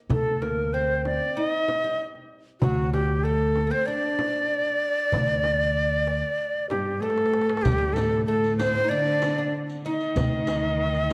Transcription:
0.10 1.18 D2 medium
0.10 0.42 A3 medium
0.10 0.43 A4 medium
0.10 darbuka dum medium
0.10 frame drum loud
0.42 0.74 A#3 medium
0.42 0.75 A#4 medium
0.42 darbuka tek medium
0.42 frame drum medium
0.73 1.36 C4 medium
0.73 1.05 C5 medium
0.90 darbuka ka soft
1.05 1.37 D5 medium
1.05 darbuka tek medium
1.05 frame drum medium
1.22 darbuka ka soft
1.36 1.85 D#4 medium
1.36 1.99 D#5 medium
1.68 darbuka tek medium
1.68 frame drum medium
1.84 1.98 G3 medium
1.99 darbuka ka soft
2.15 darbuka ka soft
2.61 3.70 D2 medium
2.61 2.95 F#3 medium
2.61 2.90 F#4 medium
2.61 frame drum medium
2.61 darbuka dum medium
2.93 3.24 G3 medium
2.93 3.25 G4 medium
2.93 darbuka tek medium
2.93 frame drum medium
3.24 3.67 A3 medium
3.24 3.73 A4 medium
3.56 darbuka tek medium
3.56 frame drum medium
3.67 3.71 A#3 medium
3.71 3.87 C4 medium
3.71 3.88 C5 medium
3.71 darbuka ka soft
3.86 6.98 D4 medium
3.86 6.69 D5 loud
4.19 darbuka tek medium
4.19 frame drum medium
4.50 darbuka ka soft
4.66 darbuka ka soft
5.12 6.21 D2 medium
5.12 darbuka dum medium
5.12 frame drum medium
5.44 darbuka tek medium
5.44 frame drum medium
5.92 darbuka ka soft
6.07 darbuka tek medium
6.23 darbuka ka soft
6.55 darbuka ka soft
6.70 7.00 G2 medium
6.70 7.02 G3 medium
6.70 7.02 G4 medium
6.70 darbuka tek medium
6.70 frame drum medium
7.01 7.64 A2 medium
7.01 7.65 A3 medium
7.01 7.64 A4 medium
7.01 darbuka tek medium
7.10 darbuka ka medium
7.18 darbuka tek medium
7.26 darbuka ka medium
7.34 darbuka tek medium
7.42 darbuka ka medium
7.50 darbuka tek medium
7.57 darbuka ka medium
7.62 8.73 D2 medium
7.62 7.96 G2 medium
7.62 7.71 G3 medium
7.62 7.95 G4 medium
7.62 riq medium
7.62 frame drum medium
7.62 darbuka dum medium
7.71 7.78 A3 medium
7.78 7.95 G3 medium
7.93 8.26 A2 medium
7.93 8.25 A4 medium
7.93 riq soft
7.93 darbuka tek medium
7.93 frame drum medium
7.98 8.27 A3 medium
8.26 8.86 A2 medium
8.26 8.60 A3 medium
8.26 8.56 A4 medium
8.44 riq soft
8.57 8.84 C4 medium
8.57 8.90 C5 loud
8.57 riq soft
8.57 darbuka tek medium
8.57 frame drum medium
8.76 darbuka ka soft
8.84 8.90 D#4 medium
8.89 9.54 D3 medium
8.89 9.37 D4 medium
8.89 9.53 D5 loud
9.06 riq soft
9.22 riq soft
9.22 darbuka tek medium
9.22 frame drum medium
9.38 9.53 D4 medium
9.70 riq soft
9.84 11.13 D#3 medium
9.84 11.13 D#4 medium
9.84 11.13 D#5 medium
9.84 riq soft
10.01 riq soft
10.16 11.13 D2 medium
10.16 riq medium
10.16 darbuka dum loud
10.16 frame drum medium
10.47 riq soft
10.47 darbuka tek medium
10.47 frame drum medium
10.95 riq soft

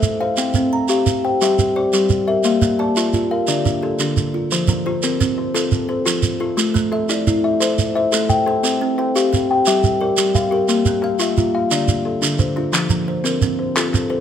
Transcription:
0.00 0.21 A3 medium
0.00 0.20 A4 medium
0.00 0.20 E5 medium
0.00 shekere medium
0.20 0.55 C5 medium
0.20 0.55 F5 medium
0.37 0.72 C4 medium
0.37 0.73 G5 medium
0.37 shekere soft
0.54 0.90 C4 medium
0.54 shekere medium
0.73 1.25 A#5 medium
0.89 1.24 G4 medium
0.89 1.42 F5 medium
0.89 shekere soft
1.06 1.42 G4 medium
1.06 shekere medium
1.25 1.75 C5 medium
1.25 1.59 G5 medium
1.41 1.76 G3 medium
1.41 1.92 G4 medium
1.41 1.60 E5 medium
1.41 shekere soft
1.59 2.11 G4 medium
1.59 shekere medium
1.76 2.28 C5 medium
1.76 2.28 D5 medium
1.93 2.28 G3 medium
1.93 2.28 G4 medium
1.93 shekere soft
2.10 shekere medium
2.28 2.63 A#4 medium
2.28 2.62 E5 medium
2.44 2.80 A#3 medium
2.44 2.80 F5 medium
2.44 shekere soft
2.62 2.97 A#3 medium
2.62 shekere medium
2.79 3.32 D5 medium
2.79 3.31 A5 medium
2.96 3.32 F4 medium
2.96 3.49 E5 medium
2.96 shekere soft
3.13 3.49 F4 medium
3.13 shekere medium
3.31 3.83 A#4 medium
3.31 3.66 F5 medium
3.48 3.83 D3 medium
3.48 3.99 D4 medium
3.48 3.66 D5 medium
3.48 shekere soft
3.66 4.18 D4 medium
3.66 shekere medium
3.83 4.35 G4 medium
3.83 4.35 A4 medium
3.99 4.35 D3 medium
3.99 4.35 D4 medium
3.99 shekere soft
4.17 shekere medium
4.34 4.69 F4 medium
4.52 4.87 F3 medium
4.52 4.85 C5 medium
4.52 shekere medium
4.68 5.04 F3 medium
4.68 shekere medium
4.86 5.38 F4 medium
4.86 5.38 C5 medium
5.03 5.38 C4 medium
5.03 5.55 A#4 medium
5.03 shekere soft
5.20 5.55 C4 medium
5.20 shekere medium
5.38 5.88 C5 medium
5.55 6.04 F4 medium
5.55 5.88 A4 medium
5.55 5.90 A4 medium
5.55 shekere medium
5.72 shekere medium
5.89 6.39 A4 medium
5.89 6.41 C5 medium
6.06 6.41 F3 medium
6.06 6.39 F4 medium
6.06 shekere medium
6.23 shekere medium
6.40 6.75 F4 medium
6.40 6.75 A4 medium
6.57 6.92 A3 medium
6.57 6.93 F4 medium
6.57 shekere medium
6.74 7.09 A3 medium
6.74 shekere medium
6.92 7.44 A4 medium
6.92 7.44 E5 medium
7.09 7.44 E4 medium
7.09 7.62 D5 medium
7.09 shekere soft
7.27 7.62 E4 medium
7.27 shekere medium
7.44 7.94 E5 medium
7.60 8.11 A4 medium
7.60 7.95 C5 medium
7.60 shekere medium
7.78 shekere medium
7.95 8.46 C5 medium
7.95 8.47 E5 medium
8.12 8.48 A3 medium
8.12 8.45 A4 medium
8.12 shekere medium
8.29 8.81 G5 medium
8.29 shekere medium
8.46 8.81 A4 medium
8.46 8.82 C5 medium
8.63 8.98 C4 medium
8.63 8.98 A4 medium
8.63 shekere medium
8.81 9.16 C4 medium
8.98 9.50 C5 medium
8.98 9.50 G5 medium
9.16 9.50 G4 medium
9.16 9.67 F5 medium
9.16 shekere soft
9.33 9.67 G4 medium
9.33 shekere medium
9.51 9.84 G5 medium
9.66 10.01 G3 medium
9.66 10.17 G4 medium
9.66 9.84 E5 medium
9.66 shekere medium
9.84 shekere medium
10.01 10.51 A#4 medium
10.01 10.52 D5 medium
10.17 10.52 G3 medium
10.17 10.50 G4 medium
10.17 shekere medium
10.35 10.86 F5 medium
10.35 shekere medium
10.51 10.86 G4 medium
10.51 10.86 A#4 medium
10.69 11.03 A#3 medium
10.69 11.04 G4 medium
10.69 shekere medium
10.85 11.21 A#3 medium
10.85 shekere medium
11.02 11.54 A#4 medium
11.02 11.55 F5 medium
11.20 11.54 F4 medium
11.20 11.72 E5 medium
11.20 shekere medium
11.38 11.72 F4 medium
11.38 shekere medium
11.55 11.89 F5 medium
11.71 12.06 D3 medium
11.71 12.21 D4 medium
11.71 11.89 D5 medium
11.71 shekere medium
11.88 shekere medium
12.05 12.57 A4 medium
12.22 12.57 D3 medium
12.22 12.55 D4 medium
12.22 shekere medium
12.39 12.91 C5 medium
12.39 shekere medium
12.56 12.91 D4 medium
12.56 12.91 F4 medium
12.73 13.07 F3 medium
12.73 13.08 D4 medium
12.73 clap medium
12.73 shekere medium
12.90 13.25 F3 medium
12.90 shekere medium
13.08 13.59 C5 medium
13.24 13.59 C4 medium
13.24 13.76 A#4 medium
13.24 shekere medium
13.42 13.76 C4 medium
13.42 shekere medium
13.59 14.09 C5 medium
13.76 14.20 F4 medium
13.76 14.10 A4 medium
13.76 14.09 A4 medium
13.76 clap medium
13.76 shekere medium
13.94 clap soft
13.94 shekere medium
14.10 14.20 A4 medium
14.10 14.20 C5 medium

